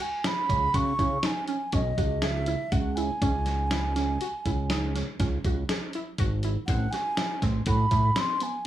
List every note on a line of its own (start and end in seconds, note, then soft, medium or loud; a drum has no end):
0.00 0.19 F#4 medium
0.00 0.28 G#5 medium
0.00 closed hi-hat soft
0.24 0.44 E4 medium
0.24 0.77 B5 medium
0.24 snare medium
0.24 closed hi-hat medium
0.49 0.69 C#2 medium
0.49 0.69 C#4 medium
0.49 kick medium
0.49 closed hi-hat medium
0.74 0.93 C#3 medium
0.74 0.93 F#4 medium
0.74 1.27 C#6 medium
0.74 kick medium
0.74 closed hi-hat medium
0.99 1.18 C#3 medium
0.99 1.18 E4 medium
0.99 kick medium
0.99 closed hi-hat soft
1.23 1.43 D#4 medium
1.23 1.47 G#5 medium
1.23 snare medium
1.23 closed hi-hat medium
1.48 1.68 C#4 medium
1.48 1.76 G#5 medium
1.48 closed hi-hat soft
1.72 1.92 B1 medium
1.72 1.92 C#4 medium
1.72 2.24 D#5 medium
1.72 kick medium
1.72 closed hi-hat medium
1.98 2.56 C#2 medium
1.98 2.17 F#4 medium
1.98 kick medium
1.98 closed hi-hat medium
2.22 2.42 G#4 medium
2.22 2.74 E5 medium
2.22 snare medium
2.22 closed hi-hat medium
2.46 2.67 E4 medium
2.46 closed hi-hat soft
2.72 3.11 C#2 medium
2.72 2.91 F#4 medium
2.72 2.97 F#5 medium
2.72 kick medium
2.72 closed hi-hat medium
2.96 3.17 E4 medium
2.96 4.94 G#5 medium
2.96 closed hi-hat medium
3.22 4.18 C#2 loud
3.22 3.41 C#4 medium
3.22 kick medium
3.22 closed hi-hat medium
3.46 3.66 F#4 medium
3.46 snare soft
3.46 closed hi-hat medium
3.71 3.91 E4 medium
3.71 snare medium
3.71 closed hi-hat medium
3.96 4.15 C#4 medium
3.96 snare soft
3.96 closed hi-hat medium
4.21 4.40 F#4 medium
4.21 closed hi-hat medium
4.46 5.03 C#2 medium
4.46 4.65 E4 medium
4.46 kick medium
4.46 closed hi-hat medium
4.70 4.90 D#4 medium
4.70 snare medium
4.70 closed hi-hat medium
4.95 5.14 C#4 medium
4.95 snare soft
4.95 closed hi-hat medium
5.19 5.39 C#2 medium
5.19 5.39 C#4 medium
5.19 kick medium
5.19 snare soft
5.19 closed hi-hat medium
5.44 5.64 C#2 medium
5.44 5.64 F#4 medium
5.44 kick medium
5.44 closed hi-hat medium
5.69 5.89 G#4 medium
5.69 snare medium
5.69 closed hi-hat medium
5.93 6.14 E4 medium
5.93 closed hi-hat soft
6.18 6.57 G#1 medium
6.18 6.38 F#4 medium
6.18 kick medium
6.18 closed hi-hat medium
6.43 6.63 E4 medium
6.43 closed hi-hat soft
6.66 6.87 A1 medium
6.66 6.88 C4 medium
6.66 6.93 F#5 medium
6.66 kick medium
6.66 closed hi-hat medium
6.91 7.13 F#4 medium
6.91 7.41 G#5 loud
6.91 snare soft
6.91 closed hi-hat soft
7.17 7.37 E4 medium
7.17 snare medium
7.17 closed hi-hat medium
7.42 7.61 A1 medium
7.42 7.62 C4 medium
7.42 kick medium
7.42 snare soft
7.42 closed hi-hat medium
7.66 7.86 A2 medium
7.66 7.86 F#4 medium
7.66 8.20 B5 medium
7.66 kick medium
7.66 closed hi-hat medium
7.91 8.11 A2 medium
7.91 8.12 E4 medium
7.91 kick medium
7.91 closed hi-hat medium
8.16 8.36 C4 medium
8.16 8.44 C6 medium
8.16 snare medium
8.16 closed hi-hat medium
8.40 8.61 B3 medium
8.40 8.66 G#5 medium
8.40 closed hi-hat medium